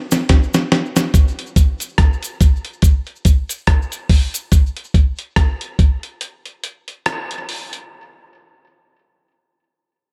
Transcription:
0.11 snare, closed hi-hat, cabasa
0.29 kick, snare, closed hi-hat
0.54 snare, closed hi-hat, cabasa
0.72 snare, closed hi-hat
0.96 snare, closed hi-hat, cabasa
1.14 kick, closed hi-hat, cabasa
1.39 closed hi-hat
1.56 kick, closed hi-hat, cabasa
1.80 closed hi-hat, cabasa
1.98 kick, cross-stick, closed hi-hat
2.23 closed hi-hat, cabasa
2.40 kick, closed hi-hat, cabasa
2.65 closed hi-hat
2.82 kick, closed hi-hat, cabasa
3.07 closed hi-hat
3.25 kick, closed hi-hat, cabasa
3.49 closed hi-hat, cabasa
3.67 kick, cross-stick, closed hi-hat
3.92 closed hi-hat, cabasa
4.09 kick, open hi-hat
4.34 closed hi-hat, cabasa
4.52 kick, closed hi-hat, cabasa
4.77 closed hi-hat
4.94 kick, closed hi-hat
5.19 closed hi-hat
5.36 kick, cross-stick, closed hi-hat
5.61 closed hi-hat
5.79 kick, closed hi-hat
6.03 closed hi-hat
6.21 closed hi-hat
6.46 closed hi-hat
6.64 closed hi-hat
6.88 closed hi-hat
7.06 cross-stick, closed hi-hat
7.31 closed hi-hat
7.49 open hi-hat
7.73 closed hi-hat

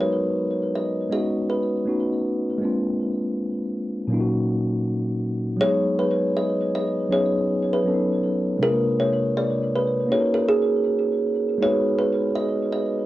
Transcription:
Already playing: F#3 G#3 B3 D#4 F#4 A#4
0.01 C#5
0.76 D#5
1.10 G#3 B3 C#4 D#4 F#4 D#5
1.50 B4
1.85 A3 B3 C#4 D#4 F#4
2.58 G#3 A#3 C4
2.63 D4 F4
4.07 A#2 F#3 A#3 C#4
4.13 D#4 F4
4.21 F#4
5.57 F#3 G#3 B3
5.61 D#4 G#4 C#5
5.99 B4
6.37 D#5
6.75 D#5
7.09 F#3 B3 C#4 D#4 G#4 C#5
7.73 B4
7.84 F#3 B3 C#4 D4 A4
7.94 D#4
8.57 C3 G#3 D4
8.62 F4 G#4 A#4
8.71 A#3
9.00 C#5
9.37 D5
9.76 B4
10.07 A#3 C#4 D#4
10.12 F#4 A4 C#5
10.20 A#4
10.34 A#4
10.49 G#4
11.58 G#3 A#3 D#4
11.62 B3 F#4 B4 C#5
11.98 B4
12.35 D#5
12.73 D#5

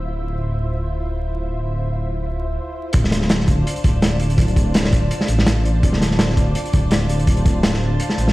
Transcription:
Already playing: D1 E4 F4 C5 E5
2.93 D1 D4 F4 C5 D5 A5, kick, closed hi-hat
3.04 snare
3.11 snare, closed hi-hat
3.21 snare
3.29 snare, closed hi-hat
3.40 snare
3.48 kick, closed hi-hat
3.67 closed hi-hat
3.76 closed hi-hat
3.84 D1, kick, closed hi-hat
4.02 snare, closed hi-hat
4.20 closed hi-hat
4.30 closed hi-hat
4.38 D1, kick, closed hi-hat
4.48 closed hi-hat
4.56 kick, closed hi-hat
4.74 snare, closed hi-hat
4.85 snare
4.93 kick, closed hi-hat
5.11 closed hi-hat
5.21 snare
5.28 A1, closed hi-hat
5.39 snare
5.46 snare, closed hi-hat
5.65 closed hi-hat
5.83 D1, kick, closed hi-hat
5.93 snare
6.01 snare, closed hi-hat
6.11 snare
6.19 snare, closed hi-hat
6.29 snare
6.37 kick, closed hi-hat
6.55 closed hi-hat
6.66 closed hi-hat
6.73 D1, kick, closed hi-hat
6.91 snare, closed hi-hat
7.09 closed hi-hat
7.19 closed hi-hat
7.27 D1, kick, closed hi-hat
7.37 closed hi-hat
7.45 kick, closed hi-hat
7.63 snare, closed hi-hat
7.74 snare
8.00 closed hi-hat
8.10 snare
8.18 A1, closed hi-hat
8.28 snare

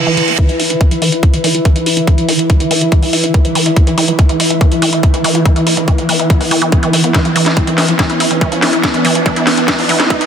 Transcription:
Already playing: E3 E4 B4 E5, reverse cymbal
0.07 E3
0.17 E3, closed hi-hat
0.28 B3, closed hi-hat
0.38 E3 E4, kick, closed hi-hat, riser
0.49 E4, closed hi-hat
0.60 E4, open hi-hat
0.70 E3, closed hi-hat
0.81 E3, kick, closed hi-hat
0.91 F3, closed hi-hat
1.02 E3, open hi-hat
1.12 E4, closed hi-hat
1.23 E4, kick, closed hi-hat
1.33 E3, closed hi-hat
1.44 E3, open hi-hat
1.55 F3, closed hi-hat
1.65 E3, kick, closed hi-hat
1.76 E4, closed hi-hat
1.86 E4, open hi-hat
1.97 E3, closed hi-hat
2.07 E3, kick, closed hi-hat
2.18 F3, closed hi-hat
2.29 E3, open hi-hat
2.39 E4, closed hi-hat
2.50 E4, kick, closed hi-hat
2.60 E3, closed hi-hat
2.71 E3, open hi-hat
2.81 F3, closed hi-hat
2.92 E3, kick, closed hi-hat
3.03 E4, open hi-hat
3.13 E4, open hi-hat
3.24 E3, closed hi-hat
3.34 E3, kick, closed hi-hat
3.45 F3, closed hi-hat
3.55 E3, open hi-hat
3.66 E4, closed hi-hat
3.76 E4, kick, closed hi-hat
3.87 E3, closed hi-hat
3.98 E3, open hi-hat
4.08 F3, closed hi-hat
4.19 E3, kick, closed hi-hat
4.29 E4, closed hi-hat
4.40 E4, open hi-hat
4.50 E3, closed hi-hat
4.61 E3, kick, closed hi-hat
4.72 F3, closed hi-hat
4.82 E3, open hi-hat
4.93 E4, closed hi-hat
5.03 E4, kick, closed hi-hat
5.14 E3, closed hi-hat
5.24 E3, open hi-hat
5.35 F3, closed hi-hat
5.45 E3, kick, closed hi-hat
5.56 E4, closed hi-hat
5.67 E4, open hi-hat
5.77 E3, closed hi-hat
5.88 E3, kick, closed hi-hat
5.98 F3, closed hi-hat
6.09 E3, open hi-hat
6.19 E4, closed hi-hat
6.30 E4, kick, closed hi-hat
6.41 E3, open hi-hat
6.51 E3, open hi-hat
6.62 E3, closed hi-hat
6.72 D3, kick, closed hi-hat
6.83 E3, closed hi-hat
6.93 E3, open hi-hat
7.04 B3, closed hi-hat
7.14 E3 B3, kick, snare, closed hi-hat
7.25 F3, closed hi-hat
7.36 E3, open hi-hat
7.46 E4, snare, closed hi-hat
7.57 E4, kick, closed hi-hat
7.67 E3, closed hi-hat
7.78 E3, snare, open hi-hat
7.88 F3, closed hi-hat
7.99 E3, kick, snare, closed hi-hat
8.10 E4, closed hi-hat
8.20 E4, open hi-hat
8.31 E3, closed hi-hat
8.41 E3, kick, closed hi-hat
8.52 F3, closed hi-hat
8.62 E3, snare, open hi-hat
8.73 E4, closed hi-hat
8.84 E4, kick, snare, closed hi-hat
8.94 E3, closed hi-hat
9.05 E3, open hi-hat
9.15 F3, closed hi-hat
9.26 E3, kick, closed hi-hat
9.36 E4, closed hi-hat
9.47 E4, snare, open hi-hat
9.57 E3, closed hi-hat
9.68 E3, kick, snare, closed hi-hat
9.79 F3, open hi-hat
9.89 E3, open hi-hat
10.00 E4, snare, closed hi-hat
10.10 E4, kick, closed hi-hat
10.21 E3, closed hi-hat

